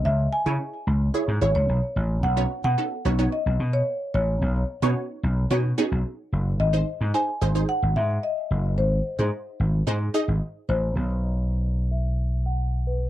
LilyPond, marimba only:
\new Staff \with { instrumentName = "Marimba" } { \time 4/4 \key b \mixolydian \tempo 4 = 110 e''8 gis''2 cis''16 cis''4~ cis''16 | fis''8. fis''4~ fis''16 dis''8. cis''8. cis''8~ | cis''8 r2. r8 | dis''4 gis''4 fis''8 e''8 dis''4 |
bis'4. r2 bis'8 | r8 dis''4~ dis''16 e''4 fis''8. b'8 | }